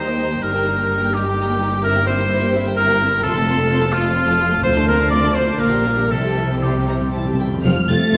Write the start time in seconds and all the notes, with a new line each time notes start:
Already playing: D#2 D#3 A#3 D#4 G4 A#4 C5 G5 A#5
0.06 A#3 G4 D#5 G5
0.18 G3 D#4 G4 A#5
0.30 A#3 D#4 G4 G5
0.42 G1 G2 G3 D#4 A#4 A#5
0.53 G3 A#3 G4 G5
0.64 G3 A#3 D#4 A#5
0.77 A#3 D#4 G4 G5
0.89 G3 D#4 G4 A#5
1.00 A#3 G4 A#4 G5
1.13 G3 D#4 G4 D#5 A#5
1.25 A#3 G4 G5
1.37 G3 D#4 D#5 A#5
1.49 A#3 G4 A#4 G5
1.60 G3 D#4 A#5
1.71 A#3 G4 G5
1.83 G2 C4 E4 A#4 E5
1.96 G3 A#3 G4 G5
2.07 A#3 C4 E4 C5 E5
2.18 A#3 E4 G4 G5
2.30 C4 E4 G4 E5
2.42 A#3 G4 A#4 G5
2.54 C4 E4 E5
2.66 A#3 G4 G5
2.77 C4 E4 A#4 E5
2.88 A#3 G4 A#4 G5
3.00 C4 E4 E5
3.12 A#3 G4 G5
3.23 F1 F2 C4 F4 A4 C6
3.36 C3 A3 A4 A5
3.47 A3 C4 F4 C6
3.59 A3 F4 A4 A5
3.70 C4 F4 C5 C6
3.82 A3 A4 A5
3.93 C4 F4 F5 C6
4.05 A3 A4 A5 C6
4.17 C4 F4 F5 C6
4.29 A3 A4 A5
4.40 C4 F4 C6
4.52 A3 A4 A5
4.63 D2 D3 C4 F4 C5 C6
4.75 A3 D4 A5
4.87 A3 C4 F4 A#4 C6
4.99 A3 D4 F4 A5
5.10 C4 F4 D5 C6
5.23 A3 D4 A4 A5
5.34 C4 F4 C5 C6
5.47 A3 D4 A5 D6
5.59 A#1 A#2 A#3 F4 A#4 F5
5.72 F3 D4 G4 G5
5.85 G3 A#3 F4 F5
5.97 D4 F4 G4 G5
6.09 C2 C3 G3 E4 A4 E5
6.24 C3 C4 G4 G5
6.35 C3 G3 E4 E5
6.43 C3
6.49 C3 C4 E4 G4 G5
6.60 C3 G3 E4 G4 C5 C6
6.68 C3
6.76 C3 C4 G4
6.85 C3 G3 E4 A#5
6.89 C3 E5
7.01 C3 C4 G4 C6
7.09 C3
7.13 C3 G3 E4 E5 A5
7.25 C3 C4 G4
7.33 C3
7.40 C3 G3 E4 G5
7.47 F2 C3
7.52 F3 G3 C4 G4
7.56 C3 F4
7.61 F1 F3 C5 F6
7.65 F2 F3 C4 F4
7.88 F1 A3 C4 F4 A6
8.12 F1 C4 F4 F5